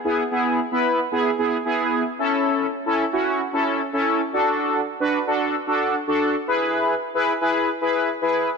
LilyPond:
\new Staff \with { instrumentName = "Analog polysynth" } { \time 4/4 \key a \major \tempo 4 = 112 <b e' gis'>16 r16 <b e' gis'>8 r16 <b e' b'>8 r16 <b e' gis'>16 r16 <b e' gis'>16 r16 <b e' gis'>8. r16 | <cis' e' a'>4 r16 <cis' e' a'>16 r16 <cis' e' fis'>8 r16 <cis' e' a'>8 r16 <cis' e' a'>8 r16 | <d' fis' a'>4 r16 <d' fis' b'>16 r16 <d' fis' a'>8 r16 <d' fis' a'>8 r16 <d' fis' a'>8 r16 | <e' gis' b'>4 r16 <e' gis' b'>16 r16 <e' gis' b'>8 r16 <e' gis' b'>8 r16 <e' gis' b'>8 r16 | }